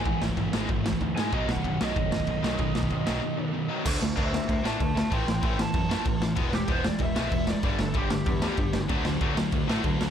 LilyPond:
<<
  \new Staff \with { instrumentName = "Lead electric guitar" } { \time 4/4 \key d \lydian \tempo 4 = 190 gis''8 r2. gis''8 | dis''8 fis''4 dis''2~ dis''8~ | dis''2. r4 | r4 <c'' e''>8 <c'' e''>8 <c'' e''>8 <e'' a''>8 <e'' a''>8 <e'' a''>8 |
<g'' c'''>8 <g'' c'''>8 <g'' c'''>8 a''2 r8 | r8 g'8 c''8 d''8 e''4. d''8 | d''8 a'8 g'2. | r1 | }
  \new Staff \with { instrumentName = "Distorted electric guitar" } { \time 4/4 \key d \lydian <gis, e gis b e'>2.~ <gis, e gis b e'>8 r8 | <b, dis fis b dis'>1 | <b, dis fis b dis'>1 | r1 |
r1 | r1 | r1 | <d a d' fis'>2~ <d a d' fis'>8 <d a d' fis'>8 <d a d' fis'>4 | }
  \new Staff \with { instrumentName = "Distorted electric guitar" } { \clef bass \time 4/4 \key d \lydian <gis, e>8 <gis, e>8 <gis, e>8 <gis, e gis>8 <gis, e>8 <gis, e>8 <gis, e>8 <gis, e gis>8 | <b, dis fis>8 <b, dis>8 <b, dis>8 <b, dis fis>8 <b, dis>8 <b, dis>8 <b, dis>8 <b, dis fis>8 | <b, dis>8 <b, dis>8 <b, dis>8 <b, dis fis>8 <b, dis>8 <b, dis>8 <b, dis>8 <b, dis fis>8 | <d a d'>8 <d a>8 <d a d'>8 <d a>8 <d a>8 <d a d'>8 <d a>8 <d a>8 |
<a, e a>8 <a, e>8 <a, e a>8 <a, e>8 <a, e>8 <a, e a>8 <a, e>8 <a, e>8 | <e gis b>8 <e gis>8 <e gis b>8 <e gis>8 <e gis>8 <e gis b>8 <e gis>8 <e gis>8 | <g, d g>8 <g, d>8 <g, d g>8 <g, d>8 <g, d>8 <g, d g>8 <g, d>8 <g, d>8 | <d fis a>8 <d fis>8 <d fis a>8 <d fis>8 <d fis>8 <d fis a>8 <d fis>8 <d fis>8 | }
  \new Staff \with { instrumentName = "Distorted electric guitar" } { \clef bass \time 4/4 \key d \lydian <gis, e>8 <gis, e>8 <gis, e>8 <gis, e gis>8 <gis, e>8 <gis, e>8 <gis, e>8 <gis, e gis>8 | <b, dis fis>8 <b, dis>8 <b, dis>8 <b, dis fis>8 <b, dis>8 <b, dis>8 <b, dis>8 <b, dis fis>8 | <b, dis>8 <b, dis>8 <b, dis>8 <b, dis fis>8 <b, dis>8 <b, dis>8 <b, dis>8 <b, dis fis>8 | <d a d'>8 <d a>8 <d a d'>8 <d a>8 <d a>8 <d a d'>8 <d a>8 <d a>8 |
<a, e a>8 <a, e>8 <a, e a>8 <a, e>8 <a, e>8 <a, e a>8 <a, e>8 <a, e>8 | <e gis b>8 <e gis>8 <e gis b>8 <e gis>8 <e gis>8 <e gis b>8 <e gis>8 <e gis>8 | <g, d g>8 <g, d>8 <g, d g>8 <g, d>8 <g, d>8 <g, d g>8 <g, d>8 <g, d>8 | <d fis a>8 <d fis>8 <d fis a>8 <d fis>8 <d fis>8 <d fis a>8 <d fis>8 <d fis>8 | }
  \new Staff \with { instrumentName = "Picked electric bass" } { \clef bass \time 4/4 \key d \lydian gis,,8 gis,,8 gis,,8 gis,,8 gis,,4 d,8 gis,8 | b,,8 b,,8 b,,8 b,,8 fis,,4 b,,8 b,,8 | b,,8 b,,8 b,,8 b,,8 r2 | d,8 d,8 d,4 d,8 a,8 d,4 |
a,,8 a,,8 a,,4 fis,4 a,,8 a,,8 | e,,8 e,,8 e,,4 e,,8 b,,8 e,,4 | g,,8 g,,8 g,,4 e,4 g,,8 g,,8 | d,8 d,8 d,4 d,8 a,8 d,4 | }
  \new DrumStaff \with { instrumentName = "Drums" } \drummode { \time 4/4 <bd cymr>8 sn16 bd16 <bd cymr>8 sn8 <bd cymr>8 sn16 bd16 <bd cymr>8 sn8 | <bd cymr>8 sn16 bd16 <bd cymr>8 sn8 <bd cymr>8 sn16 bd16 <bd cymr>8 sn8 | <bd cymr>8 sn16 bd16 <bd cymr>8 sn8 r4 r4 | <cymc bd>8 sn8 <cymc bd>8 sn8 <cymc bd>8 sn8 <cymc bd>8 sn8 |
<cymc bd>8 sn8 <cymc bd>8 sn8 <cymc bd>8 sn8 <cymc bd>8 sn8 | <cymc bd>8 sn8 <cymc bd>8 sn8 <cymc bd>8 sn8 <cymc bd>8 sn8 | <cymc bd>8 sn8 <cymc bd>8 sn8 <cymc bd>8 sn8 <cymc bd>8 sn8 | <cymc bd>8 sn8 <cymc bd>8 sn8 <cymc bd>8 sn8 <cymc bd>8 sn8 | }
>>